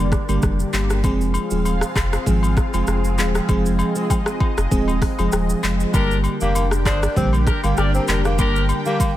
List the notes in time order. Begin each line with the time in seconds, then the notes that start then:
Already playing: F1 A#3 D4 G4 D5
0.12 kick, cross-stick, shaker
0.29 G1 D3 G3 A#3 G4, high agogo, shaker
0.42 F1, kick, cross-stick, shaker
0.59 shaker
0.73 G1 D3 G3 A#3 G4, clap, high agogo, shaker
0.90 cross-stick, shaker
1.04 F1 F3 G#3 C4 F4 G#4 F5, kick, high agogo, shaker
1.21 shaker
1.34 high agogo, shaker
1.51 D#1 F3 G#3 C4 G#4, shaker
1.65 high agogo, shaker
1.81 cross-stick, shaker
1.96 F1, kick, cross-stick, clap, high agogo, shaker
2.13 cross-stick, shaker
2.26 G#1 F3 G#3 C4 G#4, kick, shaker
2.43 high agogo, shaker
2.57 kick, cross-stick, shaker
2.73 F1 F3 G#3 C4 G#4, high agogo, shaker
2.87 F1, cross-stick, shaker
3.04 shaker
3.18 D#1 F3 G#3 C4 G#4, clap, high agogo, shaker
3.35 cross-stick, shaker
3.49 F1 F3 G#3 C4 G#4 D#5, kick, high agogo, shaker
3.66 shaker
3.79 high agogo, shaker
3.95 F3 G#3 C4 G#4, shaker
4.10 kick, high agogo, low woodblock, shaker
4.26 cross-stick, shaker
4.40 kick, high agogo
4.57 F1, cross-stick, shaker
4.71 D#1 F3 G#3 C4 G#4, kick, shaker
4.88 high agogo, shaker
5.02 kick, cross-stick, open hi-hat, shaker
5.19 F1 F3 G#3 C4 G#4, high agogo, shaker
5.32 D#1, cross-stick, low woodblock, shaker
5.50 shaker
5.63 F1 F3 G#3 C4 G#4, clap, high agogo, shaker
5.80 shaker
5.94 G1 D3 G3 A#3 D4 G4 A#4 G5, kick, high agogo, shaker
6.11 shaker
6.24 high agogo, shaker
6.41 F1 D3 G3 A#3 D4 G4, shaker
6.55 high agogo, shaker
6.71 cross-stick, shaker
6.85 G1 D4 F4 G#4 C5, kick, cross-stick, clap, high agogo, shaker
7.03 cross-stick, shaker
7.16 A#1 D3 G3 A#3 C4 G4, kick, shaker
7.33 high agogo, shaker
7.47 D4 G4 A#4, kick, cross-stick, shaker
7.64 G1 D3 G3 A#3 G4, high agogo, shaker
7.77 G1 G4 A#4 D5, cross-stick, low woodblock, shaker
7.94 C4, shaker
8.08 F1 D3 G3 A#3 D4 G4 A#4, clap, high agogo, shaker
8.25 A#3, cross-stick, shaker
8.38 G1 D3 G3 A#3 D4 G4 A#4, kick, high agogo, shaker
8.56 shaker
8.69 high agogo, shaker
8.85 D3 G3 A#3 D4 G4, shaker
9.00 kick, high agogo, shaker